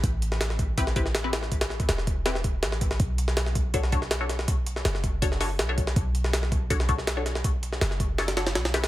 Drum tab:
HH |x-x-x-x-x-x-x-x-|xx-xx-x-x-x-x-x-|x-x-x-x-x-x-x-x-|x-x-x-x-x-o-x-x-|
SD |---ooo---o-oo-oo|-oo-oo--oo--oo-o|---ooo---o-oo-oo|---ooo---oo-o--o|
BD |o-----o-o-o-----|o--o--o---o---o-|o-----o-o-o-----|o-----o-o-----o-|

HH |x-x-x-x-x-x-x-x-|x-x-x-x-xxxxxxxx|
SD |---ooo---o-oo-oo|---ooo--oooooooo|
BD |o-----o-o-o-----|o-----o---------|